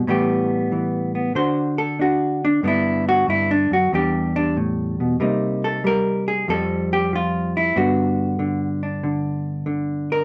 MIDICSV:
0, 0, Header, 1, 2, 480
1, 0, Start_track
1, 0, Key_signature, 1, "major"
1, 0, Tempo, 640342
1, 43, Time_signature, 4, 2, 24, 8
1, 7678, End_track
2, 0, Start_track
2, 0, Title_t, "Hollow-body jazz guitar"
2, 0, Program_c, 0, 26
2, 55, Note_on_c, 0, 45, 78
2, 61, Note_on_c, 0, 52, 62
2, 64, Note_on_c, 0, 55, 58
2, 69, Note_on_c, 0, 59, 56
2, 78, Note_on_c, 0, 67, 63
2, 530, Note_off_c, 0, 52, 0
2, 539, Note_on_c, 0, 52, 61
2, 853, Note_off_c, 0, 59, 0
2, 862, Note_on_c, 0, 59, 49
2, 993, Note_off_c, 0, 52, 0
2, 1003, Note_off_c, 0, 67, 0
2, 1011, Note_off_c, 0, 45, 0
2, 1012, Note_off_c, 0, 55, 0
2, 1013, Note_off_c, 0, 59, 0
2, 1013, Note_on_c, 0, 50, 69
2, 1015, Note_on_c, 0, 62, 42
2, 1020, Note_on_c, 0, 72, 83
2, 1022, Note_on_c, 0, 66, 43
2, 1333, Note_off_c, 0, 72, 0
2, 1337, Note_on_c, 0, 69, 96
2, 1485, Note_off_c, 0, 62, 0
2, 1490, Note_off_c, 0, 69, 0
2, 1494, Note_off_c, 0, 66, 0
2, 1494, Note_on_c, 0, 62, 60
2, 1510, Note_on_c, 0, 66, 82
2, 1812, Note_off_c, 0, 62, 0
2, 1820, Note_off_c, 0, 66, 0
2, 1833, Note_on_c, 0, 62, 85
2, 1968, Note_off_c, 0, 50, 0
2, 1972, Note_on_c, 0, 43, 66
2, 1977, Note_off_c, 0, 62, 0
2, 1977, Note_on_c, 0, 50, 47
2, 1980, Note_on_c, 0, 59, 49
2, 1988, Note_on_c, 0, 62, 53
2, 2005, Note_on_c, 0, 64, 78
2, 2308, Note_off_c, 0, 64, 0
2, 2313, Note_on_c, 0, 66, 110
2, 2449, Note_off_c, 0, 43, 0
2, 2458, Note_on_c, 0, 43, 66
2, 2459, Note_off_c, 0, 66, 0
2, 2472, Note_on_c, 0, 64, 83
2, 2618, Note_off_c, 0, 62, 0
2, 2619, Note_off_c, 0, 64, 0
2, 2630, Note_on_c, 0, 62, 88
2, 2774, Note_off_c, 0, 43, 0
2, 2779, Note_off_c, 0, 62, 0
2, 2781, Note_on_c, 0, 42, 54
2, 2798, Note_on_c, 0, 66, 83
2, 2915, Note_off_c, 0, 59, 0
2, 2932, Note_off_c, 0, 50, 0
2, 2933, Note_off_c, 0, 42, 0
2, 2941, Note_on_c, 0, 40, 62
2, 2943, Note_off_c, 0, 66, 0
2, 2950, Note_on_c, 0, 52, 47
2, 2956, Note_on_c, 0, 55, 44
2, 2960, Note_on_c, 0, 67, 77
2, 2963, Note_on_c, 0, 62, 45
2, 3260, Note_off_c, 0, 62, 0
2, 3264, Note_off_c, 0, 67, 0
2, 3269, Note_on_c, 0, 62, 98
2, 3417, Note_off_c, 0, 62, 0
2, 3425, Note_on_c, 0, 45, 66
2, 3738, Note_off_c, 0, 45, 0
2, 3750, Note_on_c, 0, 47, 60
2, 3880, Note_off_c, 0, 52, 0
2, 3894, Note_off_c, 0, 40, 0
2, 3894, Note_off_c, 0, 47, 0
2, 3897, Note_on_c, 0, 48, 73
2, 3901, Note_off_c, 0, 55, 0
2, 3901, Note_on_c, 0, 55, 51
2, 3907, Note_on_c, 0, 58, 47
2, 3911, Note_on_c, 0, 63, 45
2, 4231, Note_on_c, 0, 69, 88
2, 4376, Note_off_c, 0, 55, 0
2, 4378, Note_off_c, 0, 69, 0
2, 4379, Note_on_c, 0, 55, 65
2, 4398, Note_on_c, 0, 70, 102
2, 4704, Note_off_c, 0, 70, 0
2, 4707, Note_on_c, 0, 68, 87
2, 4833, Note_off_c, 0, 48, 0
2, 4838, Note_off_c, 0, 58, 0
2, 4839, Note_off_c, 0, 63, 0
2, 4856, Note_off_c, 0, 68, 0
2, 4858, Note_on_c, 0, 41, 74
2, 4861, Note_off_c, 0, 55, 0
2, 4864, Note_on_c, 0, 53, 48
2, 4868, Note_on_c, 0, 55, 52
2, 4874, Note_on_c, 0, 69, 101
2, 4876, Note_on_c, 0, 60, 50
2, 5181, Note_off_c, 0, 69, 0
2, 5194, Note_on_c, 0, 67, 94
2, 5333, Note_off_c, 0, 53, 0
2, 5339, Note_off_c, 0, 67, 0
2, 5343, Note_on_c, 0, 53, 61
2, 5363, Note_on_c, 0, 65, 82
2, 5666, Note_off_c, 0, 65, 0
2, 5673, Note_on_c, 0, 64, 84
2, 5793, Note_off_c, 0, 41, 0
2, 5795, Note_off_c, 0, 53, 0
2, 5801, Note_off_c, 0, 60, 0
2, 5816, Note_on_c, 0, 43, 76
2, 5817, Note_off_c, 0, 55, 0
2, 5818, Note_off_c, 0, 64, 0
2, 5820, Note_on_c, 0, 50, 56
2, 5820, Note_on_c, 0, 59, 49
2, 5828, Note_on_c, 0, 66, 84
2, 6281, Note_off_c, 0, 50, 0
2, 6290, Note_on_c, 0, 50, 67
2, 6615, Note_off_c, 0, 66, 0
2, 6618, Note_on_c, 0, 62, 47
2, 6763, Note_off_c, 0, 50, 0
2, 6772, Note_on_c, 0, 50, 61
2, 7232, Note_off_c, 0, 50, 0
2, 7241, Note_on_c, 0, 50, 70
2, 7585, Note_on_c, 0, 70, 95
2, 7678, Note_off_c, 0, 43, 0
2, 7678, Note_off_c, 0, 50, 0
2, 7678, Note_off_c, 0, 59, 0
2, 7678, Note_off_c, 0, 62, 0
2, 7678, Note_off_c, 0, 70, 0
2, 7678, End_track
0, 0, End_of_file